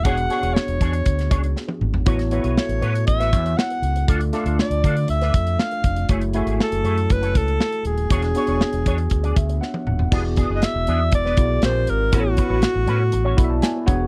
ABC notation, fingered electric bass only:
X:1
M:4/4
L:1/16
Q:1/4=119
K:A
V:1 name="Fingered electric bass" clef=bass
E,,,2 z E,,, z E,,, E,,2 D,,2 C,,2 z2 G,,,2 | A,,,3 B,,, z A,,, A,,2 A,,,2 E,,2 z2 C,,2 | D,,2 z D,, z D,, D,2 D,,2 =F,,2 z2 =F,,,2 | F,,,3 G,,, z F,,, F,,2 F,,,2 C,,2 z2 ^D,,,2 |
E,,,2 z E,,, z E,,, E,,2 D,,2 D,,2 z2 ^D,,,2 | E,,,3 F,,, z E,,, E,,2 E,,,2 B,,,2 _B,,,2 G,,,2 | A,,,2 z A,,, z A,,, A,,2 A,,,2 B,,,2 z2 E,,,2 |]